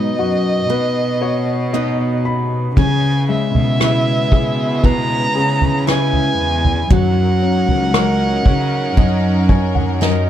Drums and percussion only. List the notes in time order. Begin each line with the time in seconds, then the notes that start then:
2.77 kick, floor tom
3.55 floor tom
3.81 cross-stick
4.32 kick
4.84 kick, floor tom
5.61 floor tom
5.88 cross-stick
6.13 floor tom
6.64 floor tom
6.90 kick, floor tom
7.68 floor tom
7.94 cross-stick
8.46 kick, floor tom
8.97 kick, floor tom
9.49 kick
9.75 floor tom
10.01 snare